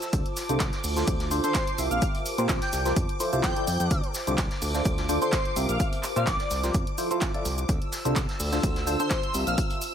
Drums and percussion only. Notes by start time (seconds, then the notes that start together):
0.02 snare, closed hi-hat, shaker
0.13 kick, closed hi-hat, shaker
0.26 closed hi-hat
0.37 snare, open hi-hat, shaker
0.49 closed hi-hat, shaker
0.60 kick, snare, clap, closed hi-hat, shaker
0.73 snare, closed hi-hat
0.84 open hi-hat, shaker
0.97 snare, closed hi-hat, shaker
1.07 kick, closed hi-hat, shaker
1.20 snare, closed hi-hat
1.31 open hi-hat, shaker
1.44 closed hi-hat, shaker
1.54 kick, snare, clap, closed hi-hat, shaker
1.67 closed hi-hat
1.78 open hi-hat, shaker
1.91 closed hi-hat, shaker
2.02 kick, closed hi-hat, shaker
2.15 closed hi-hat
2.26 open hi-hat, shaker
2.38 closed hi-hat, shaker
2.49 kick, snare, clap, closed hi-hat, shaker
2.61 snare, closed hi-hat
2.72 snare, open hi-hat, shaker
2.85 snare, closed hi-hat, shaker
2.96 kick, closed hi-hat, shaker
3.09 closed hi-hat
3.20 open hi-hat, shaker
3.33 closed hi-hat, shaker
3.43 kick, snare, clap, closed hi-hat, shaker
3.56 closed hi-hat
3.67 open hi-hat, shaker
3.80 closed hi-hat, shaker
3.91 kick, closed hi-hat, shaker
4.04 closed hi-hat
4.14 snare, open hi-hat, shaker
4.27 closed hi-hat, shaker
4.38 kick, snare, clap, closed hi-hat, shaker
4.50 snare, closed hi-hat
4.61 open hi-hat, shaker
4.74 snare, closed hi-hat, shaker
4.85 kick, closed hi-hat, shaker
4.98 snare, closed hi-hat
5.09 open hi-hat, shaker
5.22 closed hi-hat, shaker
5.32 kick, snare, clap, closed hi-hat, shaker
5.45 closed hi-hat
5.56 open hi-hat, shaker
5.69 closed hi-hat, shaker
5.80 kick, closed hi-hat, shaker
5.92 closed hi-hat
6.03 clap, open hi-hat, shaker
6.16 closed hi-hat, shaker
6.27 kick, snare, clap, closed hi-hat, shaker
6.39 snare, closed hi-hat
6.50 snare, open hi-hat, shaker
6.63 snare, closed hi-hat, shaker
6.74 kick, closed hi-hat, shaker
6.87 closed hi-hat
6.98 open hi-hat, shaker
7.11 closed hi-hat, shaker
7.21 kick, snare, clap, closed hi-hat, shaker
7.34 closed hi-hat
7.45 open hi-hat, shaker
7.58 closed hi-hat, shaker
7.69 kick, closed hi-hat, shaker
7.82 closed hi-hat
7.92 snare, open hi-hat, shaker
8.05 closed hi-hat, shaker
8.16 kick, snare, clap, closed hi-hat, shaker
8.29 snare, closed hi-hat
8.40 open hi-hat, shaker
8.52 snare, closed hi-hat, shaker
8.63 kick, closed hi-hat, shaker
8.76 snare, closed hi-hat
8.87 open hi-hat, shaker
9.00 closed hi-hat, shaker
9.10 kick, snare, clap, closed hi-hat, shaker
9.23 closed hi-hat
9.33 open hi-hat, shaker
9.47 closed hi-hat, shaker
9.58 kick, closed hi-hat, shaker
9.70 closed hi-hat
9.82 open hi-hat, shaker